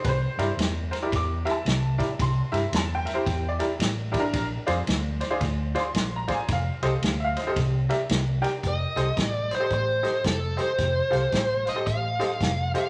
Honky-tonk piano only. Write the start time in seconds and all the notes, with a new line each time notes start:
0.04 B4
0.09 C5
0.39 E4 G4 A#4 D5
0.91 A#4 C5
1.02 E4 G4 A#4 D5
1.16 D6
1.45 E4 G4 A#4 E5
1.51 A5
1.98 E4 G4 A#4 D5
2.22 C6
2.52 E4 G4 A#4 E5
2.76 A5
2.95 G5
3.05 A#4 E5
3.14 E4 G4 A#4 C5
3.49 D5
3.59 E4 G4 A#4 D5
4.12 E4 G4 A#4 D5
4.20 D4 A#4
4.67 F4 G#4 C5 D5
5.20 C5 D5
5.30 F4 G#4 C5 D5
5.75 F4 G#4 C5 D5
5.80 C6
6.16 A#5
6.28 F4 G#4 C5 D5
6.34 G#5
6.53 F5
6.83 G4 A4 C5 D#5
7.20 E5
7.24 F5
7.37 C5 D#5
7.47 G4 A4 C5 D#5
7.89 G4 A#4 D5 E5
8.42 G4 A#4 D5 G5
8.96 G4 A4 C5 D#5
9.51 C5 D#5
9.60 G4 A4 C5 D#5
10.03 G4 A4 C5 D#5
10.57 G4 A4 C5 D#5
11.10 G4 A4 C5 F5
11.65 C5 F5
11.76 G4 A4 C5 D#5
12.19 G4 A4 C5 D#5
12.74 G4 A4 C5 F5